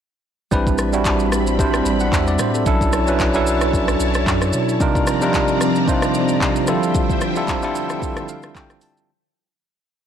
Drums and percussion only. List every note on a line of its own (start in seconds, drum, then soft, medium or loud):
0.52 kick loud
0.52 shaker medium
0.67 kick medium
0.67 shaker soft
0.78 cross-stick medium
0.78 shaker medium
0.93 shaker medium
1.05 kick medium
1.05 clap loud
1.05 shaker medium
1.19 shaker medium
1.32 cross-stick medium
1.32 shaker medium
1.47 shaker medium
1.59 kick loud
1.59 shaker medium
1.74 cross-stick loud
1.74 shaker soft
1.86 shaker medium
2.00 shaker soft
2.12 kick medium
2.12 clap medium
2.12 shaker medium
2.27 shaker medium
2.39 cross-stick medium
2.39 shaker medium
2.55 shaker medium
2.66 kick loud
2.66 shaker medium
2.81 kick medium
2.81 shaker soft
2.93 cross-stick loud
2.93 shaker medium
3.07 shaker medium
3.20 kick medium
3.20 clap loud
3.20 shaker medium
3.34 shaker medium
3.47 shaker loud
3.61 cross-stick loud
3.61 shaker medium
3.73 kick loud
3.73 shaker medium
3.88 cross-stick loud
3.88 shaker soft
4.00 shaker medium
4.14 cross-stick medium
4.14 shaker soft
4.27 kick medium
4.27 clap medium
4.27 shaker medium
4.42 cross-stick medium
4.42 shaker medium
4.53 shaker medium
4.69 shaker medium
4.81 kick loud
4.81 shaker medium
4.95 kick medium
4.95 shaker soft
5.07 cross-stick loud
5.07 shaker medium
5.22 shaker medium
5.34 kick medium
5.34 clap medium
5.34 shaker medium
5.48 shaker medium
5.61 cross-stick loud
5.61 shaker loud
5.75 shaker medium
5.88 kick loud
5.88 shaker medium
6.02 cross-stick loud
6.02 shaker soft
6.14 shaker medium
6.28 shaker soft
6.41 kick medium
6.41 clap medium
6.41 shaker medium
6.56 shaker medium
6.67 cross-stick medium
6.67 shaker medium
6.83 shaker medium
6.95 kick loud
6.95 shaker medium
7.10 kick medium
7.10 shaker soft
7.21 cross-stick medium
7.21 shaker medium
7.36 shaker medium
7.48 kick loud
7.48 clap loud
7.48 shaker medium
7.62 shaker medium
7.75 shaker loud
7.90 cross-stick medium
7.90 shaker medium
8.02 kick loud
8.02 shaker medium
8.17 cross-stick loud
8.17 shaker soft
8.29 shaker medium
8.43 cross-stick medium
8.43 shaker soft
8.55 kick medium
8.55 clap medium
8.55 shaker medium
8.70 cross-stick medium
8.70 shaker medium
8.81 open hi-hat medium
8.81 shaker medium
8.97 shaker medium